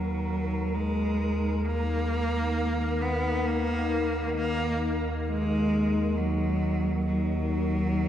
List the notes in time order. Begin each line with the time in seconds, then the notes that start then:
Already playing: D#2 F#3 D#4 A#4 F5
0.75 G#3
1.65 A#3
1.76 D#5
3.02 B3
3.47 A#3
4.36 A#3
5.28 G#3
6.17 F#3
7.06 F#3